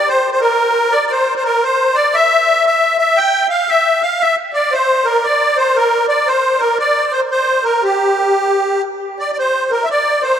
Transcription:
0.08 0.30 C5 medium
0.32 0.40 C5 medium
0.40 0.94 A#4 loud
0.92 1.05 D5 loud
1.07 1.12 D5 medium
1.11 1.34 C5 medium
1.36 1.44 C5 medium
1.44 1.64 A#4 medium
1.64 1.97 C5 medium
1.95 2.15 D5 medium
2.14 2.65 E5 loud
2.66 2.97 E5 medium
2.98 3.19 E5 medium
3.17 3.47 G5 loud
3.49 3.70 F5 medium
3.69 4.02 E5 loud
4.02 4.22 F5 medium
4.21 4.36 E5 loud
4.53 4.74 D5 medium
4.72 5.06 C5 medium
5.05 5.25 A#4 medium
5.24 5.57 D5 medium
5.57 5.77 C5 medium
5.76 6.06 A#4 medium
6.08 6.29 D5 medium
6.27 6.61 C5 medium
6.59 6.78 A#4 medium
6.79 7.12 D5 medium
7.12 7.20 C5 medium
7.31 7.64 C5 medium
7.64 7.84 A#4 medium
7.83 8.82 G4 medium
9.19 9.31 D5 medium
9.33 9.37 D5 medium
9.39 9.71 C5 medium
9.71 9.85 A#4 medium
9.84 9.89 E5 medium
9.91 10.23 D5 medium
10.22 10.39 C5 medium

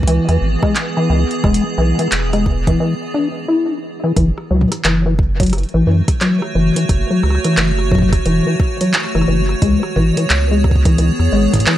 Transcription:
0.00 0.19 C#2 loud
0.00 2.80 E3 medium
0.00 2.80 B3 medium
0.00 2.80 G#4 medium
0.00 kick medium
0.07 0.28 E3 loud
0.07 closed hi-hat medium
0.29 0.38 E2 medium
0.29 0.37 E3 medium
0.29 cross-stick medium
0.29 closed hi-hat soft
0.42 0.57 G#1 medium
0.63 0.75 G#3 medium
0.63 kick loud
0.63 cross-stick medium
0.76 clap loud
0.76 closed hi-hat medium
0.97 1.09 E3 loud
1.10 1.25 C#2 loud
1.10 1.24 E3 medium
1.31 closed hi-hat soft
1.44 1.59 E1 loud
1.44 1.64 G#3 medium
1.44 kick loud
1.44 cross-stick medium
1.54 closed hi-hat medium
1.78 1.93 B1 medium
1.78 1.98 E3 loud
1.99 2.08 E3 medium
1.99 cross-stick soft
1.99 closed hi-hat soft
2.08 cross-stick soft
2.12 2.75 E1 loud
2.12 clap loud
2.12 closed hi-hat medium
2.19 cross-stick soft
2.33 2.45 G#3 medium
2.33 cross-stick medium
2.33 closed hi-hat soft
2.46 kick medium
2.67 2.80 E3 loud
2.67 kick loud
2.67 closed hi-hat soft
2.80 2.94 E3 medium
3.14 3.28 D4 medium
3.48 3.71 E4 loud
3.69 3.78 D4 medium
4.03 4.12 E3 loud
4.16 4.32 F#1 loud
4.16 4.31 E3 medium
4.16 kick loud
4.16 closed hi-hat soft
4.38 cross-stick medium
4.51 4.66 C#2 medium
4.51 4.71 F#3 medium
4.61 mid tom medium
4.72 cross-stick medium
4.72 closed hi-hat medium
4.85 5.65 F#1 medium
4.85 5.05 E3 loud
4.85 clap loud
4.85 closed hi-hat medium
4.95 9.62 A3 medium
5.06 5.14 E3 medium
5.19 kick loud
5.40 5.52 F#3 medium
5.40 11.73 F#4 medium
5.40 kick loud
5.40 closed hi-hat medium
5.43 closed hi-hat soft
5.46 closed hi-hat soft
5.50 cross-stick medium
5.50 closed hi-hat soft
5.53 closed hi-hat medium
5.58 11.78 C#5 medium
5.58 closed hi-hat soft
5.63 closed hi-hat soft
5.69 closed hi-hat soft
5.74 5.83 A1 medium
5.74 5.86 E3 loud
5.87 6.02 F#2 medium
5.87 6.01 E3 medium
6.08 kick loud
6.08 cross-stick medium
6.08 closed hi-hat medium
6.21 6.41 F#3 medium
6.21 clap loud
6.21 closed hi-hat medium
6.42 cross-stick medium
6.55 6.71 F#1 loud
6.55 6.75 E3 loud
6.76 6.85 E3 medium
6.76 closed hi-hat medium
6.89 7.05 F#1 loud
6.89 kick loud
6.89 cross-stick medium
6.89 closed hi-hat medium
7.10 7.23 F#3 medium
7.23 7.39 C#2 medium
7.23 cross-stick medium
7.30 cross-stick medium
7.35 cross-stick medium
7.44 7.57 E3 loud
7.44 cross-stick soft
7.44 closed hi-hat medium
7.46 cross-stick soft
7.53 cross-stick soft
7.57 8.20 F#1 loud
7.57 7.72 E3 medium
7.57 clap loud
7.57 closed hi-hat medium
7.79 cross-stick medium
7.91 8.12 F#3 medium
7.91 kick loud
7.95 kick medium
7.99 kick medium
8.02 kick medium
8.02 kick soft
8.09 kick soft
8.13 kick loud
8.13 cross-stick medium
8.13 closed hi-hat medium
8.26 8.41 E1 medium
8.26 8.46 E3 loud
8.26 closed hi-hat medium
8.47 8.55 E3 medium
8.60 kick loud
8.60 cross-stick medium
8.81 8.93 F#3 medium
8.81 closed hi-hat medium
8.94 cross-stick soft
8.94 clap loud
8.94 closed hi-hat medium
9.04 cross-stick soft
9.15 9.24 F#1 medium
9.15 9.27 E3 loud
9.15 cross-stick medium
9.21 cross-stick medium
9.28 9.55 F#1 medium
9.28 9.42 E3 medium
9.49 cross-stick medium
9.62 9.77 C#2 loud
9.62 9.82 G#3 medium
9.62 kick loud
9.62 closed hi-hat medium
9.79 11.78 B3 medium
9.83 cross-stick medium
9.92 10.11 G#1 medium
9.92 10.16 E3 loud
9.92 11.78 G#4 medium
9.92 mid tom medium
10.17 10.26 E3 medium
10.17 closed hi-hat medium
10.30 11.10 C#2 medium
10.30 cross-stick medium
10.30 clap loud
10.30 closed hi-hat medium
10.51 10.64 G#3 medium
10.64 kick loud
10.64 cross-stick medium
10.71 kick medium
10.76 kick medium
10.85 10.98 E3 loud
10.85 kick loud
10.85 closed hi-hat medium
10.98 11.12 E3 medium
10.98 closed hi-hat medium
11.19 11.29 E2 medium
11.19 cross-stick soft
11.32 11.48 G#1 medium
11.32 11.53 G#3 medium
11.54 kick loud
11.54 closed hi-hat medium
11.55 kick medium
11.57 kick medium
11.59 kick medium
11.59 closed hi-hat medium
11.61 kick medium
11.63 kick soft
11.65 11.78 E3 loud
11.65 kick soft
11.65 clap loud
11.65 closed hi-hat medium

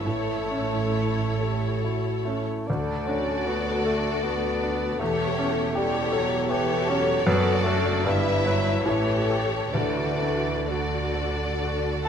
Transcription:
0.00 0.87 E4 soft
0.04 2.47 A1 soft
0.04 2.47 A2 soft
0.04 2.64 A2 soft
0.04 1.79 A3 medium
0.04 2.44 E4 soft
0.04 2.43 A4 soft
0.04 2.44 C#5 soft
0.04 0.85 C#5 soft
0.51 1.22 C#4 soft
0.95 1.65 E4 soft
0.95 1.36 A4 soft
1.39 1.82 G4 soft
1.39 2.09 A4 soft
1.81 2.53 E4 soft
1.81 2.25 F#4 soft
2.25 2.69 A3 medium
2.25 2.68 C#4 soft
2.25 2.69 E4 soft
2.67 4.96 D2 soft
2.67 4.97 D2 soft
2.67 3.09 D4 medium
2.67 4.96 F#4 soft
2.67 4.97 F#4 soft
2.67 4.96 A4 soft
2.67 5.74 A4 soft
2.67 4.97 D5 soft
3.08 3.49 C#4 medium
3.08 3.71 D4 soft
3.47 3.85 B3 medium
3.47 4.09 F#4 soft
3.85 4.25 A3 medium
3.85 4.47 A4 soft
4.23 5.01 B3 medium
4.23 4.85 F#4 soft
4.63 5.01 D4 soft
5.00 7.23 E1 medium
5.00 7.24 E2 medium
5.00 5.76 A3 medium
5.00 7.13 E4 soft
5.00 5.75 G4 soft
5.00 5.74 A4 soft
5.00 5.76 C#5 medium
5.38 5.99 C#4 soft
5.75 6.15 G3 medium
5.75 6.36 G4 soft
5.75 6.50 G4 soft
5.75 7.13 G4 medium
5.75 6.49 A4 soft
5.75 6.49 C#5 medium
6.12 6.52 F#3 medium
6.12 6.73 A4 soft
6.50 6.91 E3 medium
6.50 7.12 G4 medium
6.50 7.27 G4 medium
6.50 7.25 A4 medium
6.50 7.25 C#5 medium
6.89 7.26 F#3 medium
6.89 7.28 C#4 soft
7.27 8.03 F#1 medium
7.27 8.02 F#2 medium
7.27 8.03 F#2 medium
7.27 7.66 B3 loud
7.27 8.05 D4 medium
7.27 8.04 F#4 medium
7.27 8.05 F#4 medium
7.27 8.04 A4 medium
7.27 8.05 D5 medium
7.65 8.07 A3 medium
7.65 8.02 F#4 medium
7.65 8.01 A4 medium
8.04 8.85 G1 medium
8.04 8.85 G2 medium
8.04 8.84 G2 medium
8.04 8.47 G3 medium
8.04 8.86 E4 medium
8.04 8.86 E4 soft
8.04 8.85 B4 medium
8.04 8.86 B4 medium
8.04 8.87 E5 medium
8.46 8.84 F#3 medium
8.46 8.82 E4 soft
8.46 8.83 B4 medium
8.84 9.72 A1 medium
8.84 9.72 A2 medium
8.84 9.40 E3 medium
8.84 9.74 G4 soft
8.84 9.75 G4 soft
8.84 9.71 A4 medium
8.84 9.72 C#5 soft
8.84 9.75 C#5 soft
9.30 9.71 G4 soft
9.30 9.71 A4 soft
9.72 12.09 D2 soft
9.72 12.09 D3 soft
9.72 10.70 E3 medium
9.72 12.09 F#4 soft
9.72 10.68 F#4 soft
9.72 10.66 A4 soft
9.72 12.09 A4 soft
9.72 10.68 D5 soft
10.22 10.97 D4 soft
10.67 12.06 D3 soft
10.67 12.09 F#4 soft
10.67 11.44 F#4 soft
10.67 12.02 A4 soft
10.67 12.03 D5 soft
11.15 11.88 A4 soft
11.63 12.09 F#4 soft
12.04 12.09 A4 soft
12.04 12.09 F#5 soft
12.04 12.09 A5 medium

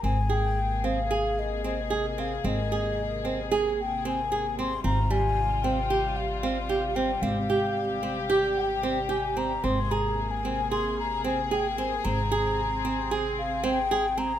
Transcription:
0.03 2.41 G#1 medium
0.03 14.39 C3 soft
0.03 4.81 A#3 soft
0.03 0.18 C4 medium
0.03 4.81 G#4 soft
0.03 0.32 G#5 medium
0.29 0.58 G#4 soft
0.29 0.86 G5 medium
0.84 0.98 C4 soft
0.84 1.41 F5 medium
1.11 1.39 G#4 medium
1.39 1.65 D#5 medium
1.64 1.79 C4 medium
1.64 2.21 D#5 medium
1.90 2.05 G#4 medium
2.18 2.32 C4 medium
2.18 2.48 F5 medium
2.44 4.80 G#1 medium
2.44 2.59 C4 medium
2.44 3.52 D#5 medium
2.72 3.00 G#4 medium
3.25 3.39 C4 medium
3.51 3.80 G#4 medium
3.81 4.04 G5 medium
4.05 4.19 C4 medium
4.05 4.56 G#5 medium
4.32 4.46 G#4 medium
4.59 4.73 C4 medium
4.59 4.83 C6 medium
4.84 7.18 G#1 medium
4.84 9.61 G3 soft
4.84 4.98 C4 medium
4.84 7.21 F4 medium
4.84 5.13 A#5 medium
5.10 5.39 G3 medium
5.10 5.65 G#5 medium
5.64 5.78 C4 medium
5.64 6.18 G5 medium
5.90 6.18 G4 medium
6.17 6.41 F5 medium
6.42 6.57 C4 medium
6.42 6.97 F5 medium
6.69 6.84 G4 medium
6.95 7.10 C4 medium
6.95 7.23 G5 medium
7.22 9.60 G#1 medium
7.22 7.37 C4 medium
7.22 9.62 G4 medium
7.22 8.28 F5 medium
7.50 7.78 G4 medium
8.03 8.17 C4 medium
8.30 8.58 G4 medium
8.57 9.12 G5 medium
8.83 8.98 C4 medium
9.09 9.24 G4 medium
9.09 9.39 G#5 medium
9.37 9.51 C4 medium
9.37 9.66 A#5 medium
9.64 12.01 G#1 medium
9.64 12.03 A#3 soft
9.64 9.78 C4 medium
9.64 14.39 G#4 medium
9.64 9.93 C6 medium
9.91 10.20 G#4 medium
9.91 10.32 A#5 medium
10.31 10.71 G#5 medium
10.45 10.59 C4 medium
10.71 11.00 G#4 medium
10.71 10.97 C6 medium
11.00 11.24 A#5 medium
11.24 11.39 C4 medium
11.24 11.54 G#5 medium
11.51 11.66 G#4 medium
11.51 11.79 G5 medium
11.78 11.93 C4 medium
11.78 12.06 G#5 medium
12.04 14.39 G#1 medium
12.04 12.19 C4 medium
12.04 14.39 C4 medium
12.04 13.11 A#5 medium
12.32 12.60 G#4 medium
12.85 12.99 C4 medium
13.11 13.40 G#4 medium
13.39 13.66 F5 medium
13.64 13.78 C4 medium
13.64 14.20 G5 medium
13.91 14.05 G#4 medium
14.18 14.32 C4 medium
14.18 14.39 A#5 medium

